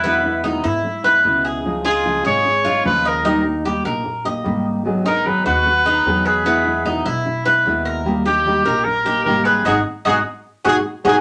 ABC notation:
X:1
M:4/4
L:1/8
Q:1/4=150
K:G#m
V:1 name="Trumpet"
E2 z6 | z G2 c3 B A- | A z6 z | z A B B4 G- |
G2 z6 | z =G3 A2 A ^G | G z G z2 G z G |]
V:2 name="Cuban tres"
B,2 D E2 B2 G- | G ^E2 G2 E2 d | D2 =G A2 d2 z | z D2 F2 D2 B |
B,2 D E2 B2 A- | A =G2 A2 G2 B | [DFG] z [DFG] z2 [DFG] z [DFG] |]
V:3 name="Nylon-string guitar"
[B,,D,G,B,E] [G,B,E] [B,,D,G,B,E] [G,B,E] z [G,B,E] [B,,G,B,E]2 | [C,^E,G,D^E] [G,DE] [C,E,G,DE] [G,DE] z [G,DE] [C,E,G,DE]2 | [D,=G,A,D=G] [A,DG] [D,G,A,DG] [A,DG] z [A,DG] [D,G,A,DG]2 | [D,F,B,DG] [B,DG] [D,F,B,DG] [B,DG] z [B,DG] [D,F,B,DG]2 |
[B,,D,G,B,E] [G,B,E] [B,,D,G,B,E] [G,B,E] z [G,B,E] [B,,G,B,E]2 | [D,=G,A,D=G] [A,DG] [D,G,A,DG] [A,DG] z [A,DG] [D,G,A,DG]2 | [G,B,D] z [G,B,D] z2 [G,B,D] z [G,B,D] |]
V:4 name="Upright bass" clef=bass
E,,3 G,,3 C,,2- | C,,3 G,,,3 D,,2- | D,,3 A,,,3 G,,,2- | G,,,3 D,,3 E,,2- |
E,,3 B,,,3 D,,2- | D,,3 A,,,3 G,,,2 | G,,, z G,,, z2 G,,, z G,,, |]